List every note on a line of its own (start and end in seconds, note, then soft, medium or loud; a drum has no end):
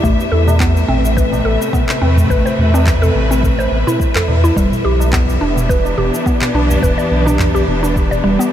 0.00 0.16 A1 medium
0.00 4.56 A2 medium
0.00 0.18 A3 medium
0.00 8.53 B3 medium
0.00 1.29 D4 medium
0.00 1.54 G4 medium
0.00 8.53 B4 medium
0.00 8.53 E5 medium
0.00 kick loud
0.00 mid tom medium
0.05 cabasa medium
0.20 cabasa soft
0.32 0.85 E2 medium
0.32 0.59 A4 medium
0.40 4.56 C3 medium
0.40 4.57 A3 medium
0.47 mid tom medium
0.47 tabla na medium
0.47 cabasa medium
0.60 0.87 B3 medium
0.60 kick loud
0.60 clap medium
0.60 tabla ge loud
0.60 cabasa soft
0.77 cabasa soft
0.88 1.42 A1 medium
0.88 1.03 C4 medium
0.88 mid tom medium
1.05 5.65 B4 medium
1.05 cabasa medium
1.17 1.44 B4 medium
1.17 kick medium
1.17 cabasa medium
1.33 mid tom medium
1.33 tabla na medium
1.33 cabasa soft
1.45 1.58 A1 medium
1.45 1.72 A4 medium
1.62 tabla tin soft
1.62 cabasa medium
1.73 2.00 B3 medium
1.73 kick medium
1.73 mid tom medium
1.73 cabasa soft
1.89 clap medium
1.89 cabasa soft
2.02 2.25 E2 medium
2.02 2.11 C4 medium
2.02 tabla tin soft
2.17 mid tom medium
2.17 tabla ge medium
2.17 cabasa medium
2.30 2.43 A1 medium
2.30 2.44 B4 medium
2.30 kick medium
2.30 cabasa medium
2.46 2.53 C5 medium
2.46 cabasa soft
2.58 3.11 E2 medium
2.58 mid tom medium
2.58 tabla tin soft
2.74 3.01 C4 medium
2.74 tabla na medium
2.74 cabasa medium
2.86 kick medium
2.86 clap medium
2.86 tabla ge medium
2.86 cabasa soft
3.02 3.09 A4 medium
3.02 mid tom medium
3.02 tabla tin soft
3.02 cabasa soft
3.15 3.68 A1 medium
3.31 3.57 C4 medium
3.31 tabla tin medium
3.31 cabasa medium
3.43 kick medium
3.43 mid tom medium
3.43 cabasa soft
3.59 3.66 C5 medium
3.59 tabla tin medium
3.59 cabasa soft
3.71 3.84 A1 medium
3.87 4.14 E4 medium
3.87 mid tom medium
3.87 cabasa medium
4.00 kick medium
4.00 cabasa medium
4.15 4.23 A4 loud
4.15 clap medium
4.15 tabla ge medium
4.15 cabasa soft
4.28 4.52 E2 medium
4.28 mid tom medium
4.28 tabla na medium
4.28 tabla tin soft
4.44 4.56 E4 medium
4.44 tabla na medium
4.44 tabla ge medium
4.44 cabasa medium
4.56 4.69 E1 medium
4.56 8.53 E3 medium
4.56 4.71 G3 medium
4.56 kick loud
4.56 cabasa medium
4.72 mid tom medium
4.72 cabasa soft
4.81 5.38 B1 medium
4.81 8.53 B3 medium
4.81 5.12 G4 medium
5.00 tabla na medium
5.00 cabasa medium
5.05 8.53 D4 medium
5.05 8.53 G4 medium
5.13 5.40 B3 medium
5.13 kick medium
5.13 clap medium
5.13 mid tom medium
5.13 tabla ge medium
5.13 cabasa soft
5.30 cabasa soft
5.41 5.94 E1 medium
5.41 5.56 D4 medium
5.57 mid tom medium
5.57 cabasa medium
5.69 5.96 B4 medium
5.69 kick medium
5.69 cabasa soft
5.85 tabla na medium
5.85 cabasa soft
5.98 6.11 E1 medium
5.98 6.25 G4 medium
5.98 mid tom medium
6.14 tabla tin soft
6.14 cabasa medium
6.26 6.53 B3 medium
6.26 kick medium
6.26 cabasa soft
6.42 clap medium
6.42 mid tom medium
6.42 cabasa soft
6.54 6.78 B1 medium
6.54 6.63 D4 medium
6.54 tabla tin soft
6.70 tabla ge medium
6.70 cabasa medium
6.83 6.96 E1 medium
6.83 6.97 B4 medium
6.83 kick medium
6.83 mid tom medium
6.83 cabasa medium
6.98 7.05 D5 medium
6.98 cabasa soft
7.11 7.64 B1 medium
7.11 tabla tin soft
7.26 7.53 D4 medium
7.26 mid tom medium
7.26 tabla na medium
7.26 cabasa medium
7.38 kick medium
7.38 clap medium
7.38 tabla ge medium
7.38 cabasa soft
7.54 7.62 G4 loud
7.54 tabla tin soft
7.54 cabasa soft
7.68 8.21 E1 medium
7.68 mid tom medium
7.82 8.10 D4 medium
7.82 tabla tin medium
7.82 cabasa medium
7.96 kick medium
7.96 cabasa soft
8.11 8.19 D5 medium
8.11 mid tom medium
8.11 tabla tin medium
8.11 cabasa soft
8.24 8.37 E1 medium
8.24 8.38 G3 loud
8.39 8.52 B3 medium
8.39 cabasa medium